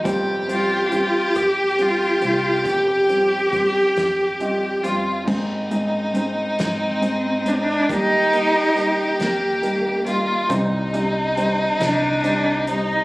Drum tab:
CC |------|------|x-----|------|
HH |xxxxxx|xxxxxx|-xxxxx|xxxxxx|
SD |---r--|---o--|---o--|---o--|
BD |o-----|o-o---|o-----|o-----|

CC |------|
HH |xxxxxx|
SD |---o--|
BD |o-----|